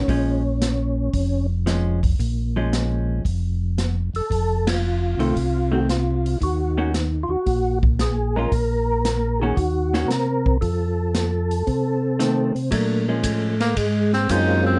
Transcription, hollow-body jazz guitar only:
0.09 0.41 F3 soft
0.09 0.41 G#3 medium
0.09 0.42 C#4 medium
1.66 1.99 F3 medium
1.66 1.99 G#3 medium
1.66 2.00 C#4 medium
2.56 3.22 F3 medium
2.56 3.22 G#3 medium
2.56 3.22 C#4 medium
5.19 5.34 D#3 soft
5.19 5.34 A3 soft
5.19 5.34 C4 medium
5.72 5.86 D#3 soft
5.72 5.86 A3 medium
5.72 5.87 C4 medium
6.78 6.92 D#3 medium
6.78 6.92 A#3 medium
6.78 6.92 C#4 medium
6.78 6.92 F#4 medium
8.36 8.50 G#3 medium
8.36 8.51 C#4 medium
8.36 8.51 F4 medium
9.42 9.55 D#3 medium
9.42 9.56 A#3 medium
9.42 9.56 C#4 medium
9.42 9.56 F#4 medium
9.94 10.08 D#3 medium
9.94 10.08 A#3 medium
9.94 10.08 C#4 medium
9.94 10.09 F#4 medium
12.19 12.52 D#3 medium
12.19 12.52 A3 medium
12.19 12.53 C4 medium
12.71 13.04 F#3 medium
12.71 13.04 A3 medium
12.71 13.05 D4 medium
13.08 13.54 F3 soft
13.08 13.54 G#3 medium
13.08 13.54 C#4 medium

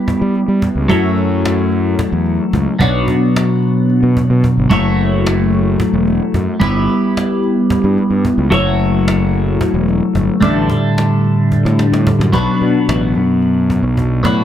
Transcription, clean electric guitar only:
0.00 0.87 G3 medium
0.00 0.88 B3 medium
0.00 0.88 E4 medium
0.00 0.89 G4 loud
0.88 2.80 F#3 medium
0.88 2.78 A3 medium
0.88 2.79 E4 medium
0.88 2.81 F#4 medium
0.88 2.82 C#5 medium
2.79 4.69 B2 medium
2.79 4.68 F#3 medium
2.79 4.69 B3 medium
2.79 4.70 D4 medium
2.79 4.70 F#4 loud
2.79 4.70 C#5 loud
4.70 6.59 F#3 medium
4.70 6.59 A3 medium
4.70 6.62 E4 medium
4.70 6.60 F#4 medium
4.70 6.61 C#5 medium
6.60 8.49 G3 medium
6.60 8.50 B3 medium
6.60 8.51 E4 medium
6.60 8.51 G4 medium
8.50 10.40 F#3 medium
8.50 10.41 A3 medium
8.50 10.41 E4 medium
8.50 10.42 F#4 loud
8.50 10.42 C#5 medium
10.41 12.31 A2 medium
10.41 12.32 D3 medium
10.41 12.32 G3 medium
10.41 12.32 D4 medium
10.41 12.32 E4 medium
10.41 12.33 A4 loud
12.32 14.23 B2 medium
12.32 14.24 F#3 medium
12.32 14.25 B3 loud
12.32 14.25 D4 medium
12.32 14.26 F#4 medium
14.23 14.44 B2 medium
14.23 14.44 F#3 medium
14.23 14.44 B3 medium
14.23 14.44 D4 medium
14.23 14.44 F#4 loud

